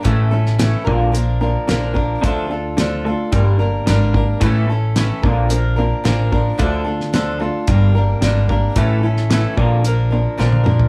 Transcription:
<<
  \new Staff \with { instrumentName = "Steel-string acoustic guitar" } { \time 4/4 \key bes \lydian \tempo 4 = 110 <a, e a cis' e' a'>8 <a cis' e' a'>8 <a, e a cis' e' a'>8 <f bes d' bes'>8 <f bes d' bes'>8 <f bes d' bes'>8 <bes, d f bes d' bes'>8 <f bes d' bes'>8 | <d f d' f' a'>8 <d' f' a'>8 <d f d' f' a'>8 <d' f' a'>8 <g bes d' bes'>8 <g bes d' bes'>8 <g, d g bes d' bes'>8 <g bes d' bes'>8 | <a, e a cis' e' a'>8 <a cis' e' a'>8 <a, e a cis' e' a'>8 <f bes d' bes'>8 <f bes d' bes'>8 <f bes d' bes'>8 <bes, d f bes d' bes'>8 <f bes d' bes'>8 | <d f d' f' a'>8 <d' f' a'>8 <d f d' f' a'>8 <d' f' a'>8 <g bes d' bes'>8 <g bes d' bes'>8 <g, d g bes d' bes'>8 <g bes d' bes'>8 |
<a, e a cis' e' a'>8 <a cis' e' a'>8 <a, e a cis' e' a'>8 <f bes d' bes'>8 <f bes d' bes'>8 <f bes d' bes'>8 <bes, d f bes d' bes'>8 <f bes d' bes'>8 | }
  \new Staff \with { instrumentName = "Clean electric guitar" } { \clef bass \time 4/4 \key bes \lydian <a, e a>8 <a, e>8 <a, e>8 <bes, d bes>8 <bes, d>8 <bes, d>8 <bes, d>8 <bes, d>8 | <d a d'>8 <d a>8 <d a>8 <d a>8 <g, d g>8 <g, d>8 <g, d>8 <g, d>8 | <a, e a>8 <a, e>8 <a, e>8 <bes, d bes>8 <bes, d>8 <bes, d>8 <bes, d>8 <bes, d>8 | <d a d'>8 <d a>8 <d a>8 <d a>8 <g, d g>8 <g, d>8 <g, d>8 <g, d>8 |
<a, e a>8 <a, e>8 <a, e>8 <bes, d bes>8 <bes, d>8 <bes, d>8 <bes, d>8 <bes, d>8 | }
  \new Staff \with { instrumentName = "Upright bass" } { \clef bass \time 4/4 \key bes \lydian a,,4. bes,,4. bes,,4 | d,2 g,,4 gis,,4 | a,,4. bes,,4. a,,4 | d,2 g,,4 gis,,4 |
a,,4. bes,,4. bes,,4 | }
  \new DrumStaff \with { instrumentName = "Drums" } \drummode { \time 4/4 <hh bd>8. sn16 <hh sn>8 bd8 hh4 <hh sn>8 bd8 | <hh bd>4 <hh sn>4 <hh bd>4 <hh sn>8 bd8 | <hh bd>4 <hh sn>8 bd8 hh4 <hh sn>8 bd8 | <hh bd>8. sn16 <hh sn>4 <hh bd>4 <hh sn>8 bd8 |
<hh bd>8. sn16 <hh sn>8 bd8 hh4 sn16 tommh16 toml16 tomfh16 | }
>>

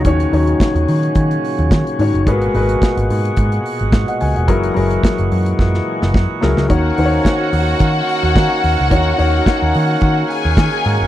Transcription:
<<
  \new Staff \with { instrumentName = "String section" } { \time 4/4 \key dis \phrygian \tempo 4 = 108 r1 | r1 | r1 | <fis' fis''>1~ |
<fis' fis''>2~ <fis' fis''>8 <gis' gis''>4. | }
  \new Staff \with { instrumentName = "Grand piano" } { \time 4/4 \key dis \phrygian << { r1 | r2. r16 <dis'' fis''>16 gis''16 <dis'' fis''>16~ | <dis'' fis''>16 r2. r8. | r1 |
r1 | } \\ { <dis dis' fis' cis''>8 <dis dis' fis' cis''>4. r4. <dis dis' fis' cis''>8 | <gis fis' ais' b'>8 <gis fis' ais' b'>4. r2 | <fis e' gis' ais'>8 <fis e' gis' ais'>4. r4. <fis e' gis' ais'>8 | <dis dis' fis' cis''>8 <dis dis' fis' bis' cis''>4. r2 |
<dis dis' fis' cis''>8 <dis dis' fis' cis''>4. r2 | } >> }
  \new Staff \with { instrumentName = "Tonewheel organ" } { \clef bass \time 4/4 \key dis \phrygian << { <ais, fis cis'>1 | <ais, gis fis'>1~ | <ais, gis fis'>1 | <ais cis' fis'>1~ |
<ais cis' fis'>1 | } \\ { cis1 | b,1 | e1 | dis1~ |
dis1 | } >> }
  \new Staff \with { instrumentName = "Picked electric bass" } { \clef bass \time 4/4 \key dis \phrygian dis,8 dis,8 r16 dis,16 dis8 dis8 r16 dis,16 dis16 r16 gis,16 fis,,16 | gis,,8 gis,,8 r16 gis,,16 gis,8 gis,8 r16 gis,,16 gis,16 r16 cis,16 e,,16 | fis,,8 fis,,8 r16 fis,,16 fis,8 fis,8 r16 fis,,16 fis,16 r16 cis,16 cis,16 | dis,8 dis,8 r8 dis,8 dis8 r16 dis,16 dis16 r16 dis,16 cis,16 |
dis,8 dis,8 r16 dis,16 dis8 dis8 r16 dis,16 dis16 r16 gis,16 fis,,16 | }
  \new DrumStaff \with { instrumentName = "Drums" } \drummode { \time 4/4 <hh bd>16 hh16 hho16 hh16 <hh bd sn>16 hh16 hho16 hh16 <hh bd>16 hh16 hho16 hh16 <hh bd sn>16 hh16 hho16 hh16 | <hh bd>16 hh16 hho16 hh16 <hh bd sn>16 hh16 hho16 hh16 <hh bd>16 hh16 hho16 hh16 <hh bd sn>16 hh16 hho16 hh16 | <hh bd>16 hh16 hho16 hh16 <hh bd sn>16 hh16 hho16 hh16 <bd sn>16 sn8 sn16 <bd sn>8 sn16 sn16 | <hh bd>8 hho8 <hh bd sn>8 hho8 <hh bd>8 hho8 <hh bd sn>8 hho8 |
<hh bd>8 hho8 <hh bd sn>8 hho8 <hh bd>8 hho8 <hh bd sn>8 hho8 | }
>>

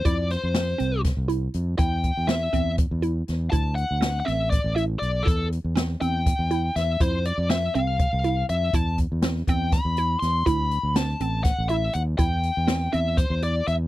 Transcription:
<<
  \new Staff \with { instrumentName = "Lead electric guitar" } { \time 7/8 \key e \phrygian \tempo 4 = 121 d''8 c''4. r4. | g''4 e''4 r4. | a''8 fis''8.~ fis''32 fis''32 e''8 d''8 e''8 d''8 | a'8 r4 g''4. e''8 |
c''8 d''8 e''8 f''4. e''8 | a''8 r4 g''8 b''4 c'''8 | b''4 a''4 fis''8 e''8 fis''8 | g''4. e''8 c''8 d''8 e''8 | }
  \new Staff \with { instrumentName = "Synth arpeggio sound" } { \time 7/8 \key e \phrygian e'4 c'8 c'4 e'4 | e'4 c'8 c'4 e'4 | e'4 c'8 c'4 e'4 | e'4 c'8 c'4 e'4 |
e'4 c'8 c'4 e'4 | e'4 c'8 c'4 e'4 | e'4 c'8 c'4 e'4 | e'4 c'8 c'4 e'4 | }
  \new Staff \with { instrumentName = "Fingered electric bass" } { \clef bass \time 7/8 \key e \phrygian f,8. f,8. c,8. c,8. f,8 | e,8. e,8. e,8. e,8. e,8 | d,8. d,8. a,,8. a,,8. b,,8 | e,8. e,8. e,8. e,8. e,8 |
f,8. f,8. c,8. c,8. f,8 | e,8. e,8. e,8. e,8. e,8 | d,8. d,8. a,,8. a,,8. dis,8 | e,8. e,8. e,8. e,8. e,8 | }
  \new DrumStaff \with { instrumentName = "Drums" } \drummode { \time 7/8 <hh bd>8 <hh sn>8 <hh sn>8 hh8 <hh bd sn>8 hh8 hh8 | <hh bd>8 <hh bd>8 <hh sn>8 <hh bd>8 <hh bd>8 hh8 <hh sn>8 | <hh bd>8 hh8 <hh sn>8 <hh sn>8 <hh bd>8 hh8 hh8 | <hh bd>8 hh8 <hh sn>8 hh8 <hh bd>8 hh8 <hh sn>8 |
<hh bd>8 hh8 <hh sn>8 hh8 <hh bd>8 hh8 hh8 | <hh bd>8 <hh bd>8 <hh sn>8 <hh bd>8 <hh bd sn>8 hh8 <hh sn>8 | <hh bd>8 hh8 <hh sn>8 hh8 <hh bd sn>8 hh8 hh8 | <hh bd>8 hh8 <hh sn>8 hh8 <hh bd>8 hh8 hh8 | }
>>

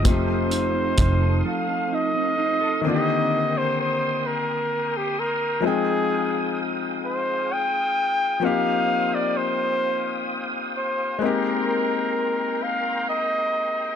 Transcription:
<<
  \new Staff \with { instrumentName = "Tonewheel organ" } { \time 6/8 \key c \minor \tempo 4. = 43 << { <a' c''' ees'''>2. | <bes' c''' ees'''>2. | <aes' ees'''>2. | <c'' ees'''>2. |
<bes' bes'' c'''>2. | } \\ { f''2. | g''2. | f''2.~ | f''2. |
g''2. | } >> }
  \new Staff \with { instrumentName = "Flugelhorn" } { \time 6/8 \key c \minor c''4. f''8 ees''4 | ees''8. c''16 c''8 bes'8. g'16 bes'8 | aes'4 r8 c''8 g''4 | f''8. d''16 c''4 r8 c''8 |
bes'4. f''8 ees''4 | }
  \new Staff \with { instrumentName = "Clean electric guitar" } { \time 6/8 \key c \minor <f a'>16 c'16 ees'16 c'16 ees'16 a'16 <f a'>16 c'16 ees'16 c'16 ees'16 a'16 | r2. | r2. | r2. |
r2. | }
  \new Staff \with { instrumentName = "Grand piano" } { \time 6/8 \key c \minor <f a c' ees' g'>2. | <d ees bes c' f' g'>2. | <f aes c' ees' g''>2. | <f bes c' ees' g'>2. |
<aes bes c' ees' g'>2. | }
  \new Staff \with { instrumentName = "Fingered electric bass" } { \clef bass \time 6/8 \key c \minor f,,4 f,,8 r4. | r2. | r2. | r2. |
r2. | }
  \new DrumStaff \with { instrumentName = "Drums" } \drummode { \time 6/8 <hh bd>8 hh8 <hh bd>8 r4. | r4. r4. | r4. r4. | r4. r4. |
r4. r4. | }
>>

